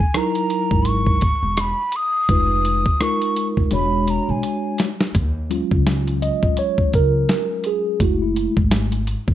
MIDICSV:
0, 0, Header, 1, 6, 480
1, 0, Start_track
1, 0, Key_signature, -6, "minor"
1, 0, Tempo, 714286
1, 1540, Time_signature, 4, 2, 24, 8
1, 6276, End_track
2, 0, Start_track
2, 0, Title_t, "Flute"
2, 0, Program_c, 0, 73
2, 0, Note_on_c, 0, 80, 86
2, 116, Note_on_c, 0, 82, 90
2, 126, Note_off_c, 0, 80, 0
2, 595, Note_on_c, 0, 85, 95
2, 605, Note_off_c, 0, 82, 0
2, 1079, Note_on_c, 0, 83, 96
2, 1089, Note_off_c, 0, 85, 0
2, 1318, Note_on_c, 0, 87, 118
2, 1328, Note_off_c, 0, 83, 0
2, 2037, Note_on_c, 0, 85, 94
2, 2047, Note_off_c, 0, 87, 0
2, 2337, Note_off_c, 0, 85, 0
2, 2515, Note_on_c, 0, 83, 87
2, 2757, Note_on_c, 0, 82, 76
2, 2767, Note_off_c, 0, 83, 0
2, 2893, Note_on_c, 0, 80, 70
2, 2903, Note_off_c, 0, 82, 0
2, 3226, Note_off_c, 0, 80, 0
2, 6276, End_track
3, 0, Start_track
3, 0, Title_t, "Tine electric piano"
3, 0, Program_c, 1, 4
3, 100, Note_on_c, 1, 54, 75
3, 103, Note_on_c, 1, 63, 67
3, 104, Note_on_c, 1, 64, 64
3, 111, Note_on_c, 1, 70, 78
3, 799, Note_off_c, 1, 54, 0
3, 800, Note_off_c, 1, 63, 0
3, 801, Note_off_c, 1, 64, 0
3, 804, Note_off_c, 1, 70, 0
3, 1540, Note_on_c, 1, 56, 65
3, 1540, Note_on_c, 1, 63, 64
3, 1547, Note_on_c, 1, 65, 62
3, 1548, Note_on_c, 1, 71, 73
3, 1906, Note_off_c, 1, 56, 0
3, 1906, Note_off_c, 1, 63, 0
3, 1909, Note_off_c, 1, 65, 0
3, 1909, Note_off_c, 1, 71, 0
3, 2018, Note_on_c, 1, 56, 67
3, 2020, Note_on_c, 1, 63, 65
3, 2024, Note_on_c, 1, 65, 64
3, 2029, Note_on_c, 1, 70, 75
3, 2487, Note_off_c, 1, 56, 0
3, 2495, Note_on_c, 1, 56, 71
3, 2500, Note_off_c, 1, 63, 0
3, 2500, Note_on_c, 1, 62, 62
3, 2502, Note_off_c, 1, 65, 0
3, 2503, Note_on_c, 1, 66, 61
3, 2504, Note_off_c, 1, 70, 0
3, 2507, Note_on_c, 1, 73, 79
3, 3273, Note_off_c, 1, 56, 0
3, 3276, Note_off_c, 1, 62, 0
3, 3277, Note_off_c, 1, 66, 0
3, 3280, Note_off_c, 1, 73, 0
3, 3694, Note_on_c, 1, 54, 54
3, 3698, Note_on_c, 1, 56, 48
3, 3699, Note_on_c, 1, 61, 47
3, 3704, Note_on_c, 1, 65, 56
3, 4181, Note_on_c, 1, 75, 92
3, 4427, Note_on_c, 1, 73, 100
3, 4428, Note_off_c, 1, 75, 0
3, 4647, Note_off_c, 1, 73, 0
3, 4671, Note_on_c, 1, 70, 91
3, 5151, Note_on_c, 1, 68, 82
3, 5160, Note_off_c, 1, 70, 0
3, 5350, Note_off_c, 1, 54, 0
3, 5352, Note_off_c, 1, 56, 0
3, 5353, Note_off_c, 1, 61, 0
3, 5355, Note_off_c, 1, 65, 0
3, 5374, Note_on_c, 1, 56, 51
3, 5381, Note_on_c, 1, 57, 48
3, 5383, Note_on_c, 1, 64, 60
3, 5388, Note_on_c, 1, 66, 82
3, 5392, Note_off_c, 1, 68, 0
3, 5516, Note_off_c, 1, 64, 0
3, 5524, Note_on_c, 1, 64, 65
3, 5529, Note_off_c, 1, 66, 0
3, 5746, Note_off_c, 1, 64, 0
3, 6070, Note_off_c, 1, 56, 0
3, 6073, Note_off_c, 1, 57, 0
3, 6276, End_track
4, 0, Start_track
4, 0, Title_t, "Upright bass"
4, 0, Program_c, 2, 32
4, 479, Note_on_c, 2, 32, 81
4, 861, Note_off_c, 2, 32, 0
4, 958, Note_on_c, 2, 28, 79
4, 1150, Note_off_c, 2, 28, 0
4, 1538, Note_on_c, 2, 29, 96
4, 1920, Note_off_c, 2, 29, 0
4, 2399, Note_on_c, 2, 29, 81
4, 2479, Note_off_c, 2, 29, 0
4, 2498, Note_on_c, 2, 28, 93
4, 2801, Note_off_c, 2, 28, 0
4, 2881, Note_on_c, 2, 35, 87
4, 2960, Note_off_c, 2, 35, 0
4, 3461, Note_on_c, 2, 39, 97
4, 3763, Note_off_c, 2, 39, 0
4, 3839, Note_on_c, 2, 37, 85
4, 4221, Note_off_c, 2, 37, 0
4, 4320, Note_on_c, 2, 34, 84
4, 4399, Note_off_c, 2, 34, 0
4, 4662, Note_on_c, 2, 37, 76
4, 4852, Note_off_c, 2, 37, 0
4, 5375, Note_on_c, 2, 30, 89
4, 5679, Note_off_c, 2, 30, 0
4, 5757, Note_on_c, 2, 32, 91
4, 6140, Note_off_c, 2, 32, 0
4, 6233, Note_on_c, 2, 30, 82
4, 6276, Note_off_c, 2, 30, 0
4, 6276, End_track
5, 0, Start_track
5, 0, Title_t, "Muted upright bass strokes"
5, 4556, Note_on_c, 9, 29, 48
5, 4624, Note_off_c, 9, 29, 0
5, 6276, End_track
6, 0, Start_track
6, 0, Title_t, "Drums"
6, 0, Note_on_c, 9, 36, 85
6, 67, Note_off_c, 9, 36, 0
6, 97, Note_on_c, 9, 37, 106
6, 98, Note_on_c, 9, 42, 72
6, 164, Note_off_c, 9, 37, 0
6, 165, Note_off_c, 9, 42, 0
6, 237, Note_on_c, 9, 42, 50
6, 304, Note_off_c, 9, 42, 0
6, 336, Note_on_c, 9, 42, 64
6, 403, Note_off_c, 9, 42, 0
6, 478, Note_on_c, 9, 36, 85
6, 545, Note_off_c, 9, 36, 0
6, 571, Note_on_c, 9, 42, 92
6, 639, Note_off_c, 9, 42, 0
6, 716, Note_on_c, 9, 36, 80
6, 783, Note_off_c, 9, 36, 0
6, 814, Note_on_c, 9, 42, 60
6, 821, Note_on_c, 9, 36, 91
6, 881, Note_off_c, 9, 42, 0
6, 888, Note_off_c, 9, 36, 0
6, 1056, Note_on_c, 9, 42, 82
6, 1059, Note_on_c, 9, 37, 105
6, 1123, Note_off_c, 9, 42, 0
6, 1126, Note_off_c, 9, 37, 0
6, 1291, Note_on_c, 9, 42, 79
6, 1358, Note_off_c, 9, 42, 0
6, 1537, Note_on_c, 9, 42, 78
6, 1538, Note_on_c, 9, 36, 115
6, 1605, Note_off_c, 9, 42, 0
6, 1606, Note_off_c, 9, 36, 0
6, 1780, Note_on_c, 9, 42, 66
6, 1847, Note_off_c, 9, 42, 0
6, 1920, Note_on_c, 9, 36, 85
6, 1987, Note_off_c, 9, 36, 0
6, 2020, Note_on_c, 9, 37, 100
6, 2021, Note_on_c, 9, 42, 70
6, 2087, Note_off_c, 9, 37, 0
6, 2088, Note_off_c, 9, 42, 0
6, 2161, Note_on_c, 9, 42, 53
6, 2228, Note_off_c, 9, 42, 0
6, 2261, Note_on_c, 9, 42, 68
6, 2329, Note_off_c, 9, 42, 0
6, 2400, Note_on_c, 9, 36, 81
6, 2468, Note_off_c, 9, 36, 0
6, 2492, Note_on_c, 9, 42, 92
6, 2559, Note_off_c, 9, 42, 0
6, 2739, Note_on_c, 9, 42, 64
6, 2806, Note_off_c, 9, 42, 0
6, 2978, Note_on_c, 9, 42, 86
6, 3045, Note_off_c, 9, 42, 0
6, 3214, Note_on_c, 9, 42, 74
6, 3224, Note_on_c, 9, 38, 88
6, 3281, Note_off_c, 9, 42, 0
6, 3291, Note_off_c, 9, 38, 0
6, 3364, Note_on_c, 9, 38, 83
6, 3431, Note_off_c, 9, 38, 0
6, 3459, Note_on_c, 9, 36, 112
6, 3460, Note_on_c, 9, 42, 85
6, 3526, Note_off_c, 9, 36, 0
6, 3527, Note_off_c, 9, 42, 0
6, 3701, Note_on_c, 9, 42, 64
6, 3768, Note_off_c, 9, 42, 0
6, 3840, Note_on_c, 9, 36, 90
6, 3907, Note_off_c, 9, 36, 0
6, 3942, Note_on_c, 9, 38, 107
6, 3943, Note_on_c, 9, 42, 71
6, 4010, Note_off_c, 9, 38, 0
6, 4011, Note_off_c, 9, 42, 0
6, 4082, Note_on_c, 9, 42, 52
6, 4150, Note_off_c, 9, 42, 0
6, 4183, Note_on_c, 9, 42, 68
6, 4250, Note_off_c, 9, 42, 0
6, 4319, Note_on_c, 9, 36, 87
6, 4386, Note_off_c, 9, 36, 0
6, 4414, Note_on_c, 9, 42, 94
6, 4481, Note_off_c, 9, 42, 0
6, 4556, Note_on_c, 9, 36, 86
6, 4624, Note_off_c, 9, 36, 0
6, 4660, Note_on_c, 9, 42, 59
6, 4662, Note_on_c, 9, 36, 92
6, 4727, Note_off_c, 9, 42, 0
6, 4729, Note_off_c, 9, 36, 0
6, 4899, Note_on_c, 9, 42, 84
6, 4901, Note_on_c, 9, 38, 103
6, 4966, Note_off_c, 9, 42, 0
6, 4968, Note_off_c, 9, 38, 0
6, 5132, Note_on_c, 9, 42, 72
6, 5199, Note_off_c, 9, 42, 0
6, 5377, Note_on_c, 9, 36, 114
6, 5377, Note_on_c, 9, 42, 83
6, 5444, Note_off_c, 9, 36, 0
6, 5444, Note_off_c, 9, 42, 0
6, 5621, Note_on_c, 9, 42, 66
6, 5688, Note_off_c, 9, 42, 0
6, 5758, Note_on_c, 9, 36, 92
6, 5825, Note_off_c, 9, 36, 0
6, 5856, Note_on_c, 9, 38, 105
6, 5857, Note_on_c, 9, 42, 76
6, 5923, Note_off_c, 9, 38, 0
6, 5924, Note_off_c, 9, 42, 0
6, 5995, Note_on_c, 9, 42, 56
6, 6062, Note_off_c, 9, 42, 0
6, 6096, Note_on_c, 9, 42, 70
6, 6163, Note_off_c, 9, 42, 0
6, 6235, Note_on_c, 9, 36, 93
6, 6276, Note_off_c, 9, 36, 0
6, 6276, End_track
0, 0, End_of_file